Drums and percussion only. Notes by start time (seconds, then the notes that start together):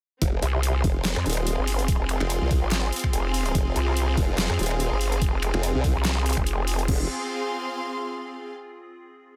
0.22 kick, closed hi-hat
0.42 closed hi-hat
0.63 closed hi-hat
0.84 kick, open hi-hat
1.05 snare, clap, closed hi-hat
1.16 finger snap
1.26 closed hi-hat
1.30 closed hi-hat
1.33 closed hi-hat
1.37 finger snap
1.47 closed hi-hat
1.67 open hi-hat
1.79 closed hi-hat
1.88 kick, closed hi-hat
2.09 finger snap, closed hi-hat
2.21 finger snap
2.30 closed hi-hat
2.51 kick, open hi-hat
2.72 snare, clap, closed hi-hat
2.92 closed hi-hat
2.96 closed hi-hat
2.99 closed hi-hat
3.04 finger snap, kick
3.13 closed hi-hat
3.34 open hi-hat
3.45 closed hi-hat
3.55 kick, closed hi-hat
3.76 closed hi-hat
3.97 closed hi-hat
4.17 kick, open hi-hat
4.38 snare, clap, closed hi-hat
4.50 finger snap
4.59 closed hi-hat
4.63 closed hi-hat
4.66 closed hi-hat
4.71 finger snap
4.80 closed hi-hat
5.01 open hi-hat
5.12 closed hi-hat
5.22 kick, closed hi-hat
5.42 finger snap, closed hi-hat
5.54 finger snap
5.63 closed hi-hat
5.84 kick, open hi-hat
6.05 snare, clap, closed hi-hat
6.26 closed hi-hat
6.30 closed hi-hat
6.33 closed hi-hat
6.37 finger snap, kick
6.47 closed hi-hat
6.67 open hi-hat
6.79 closed hi-hat
6.88 kick, crash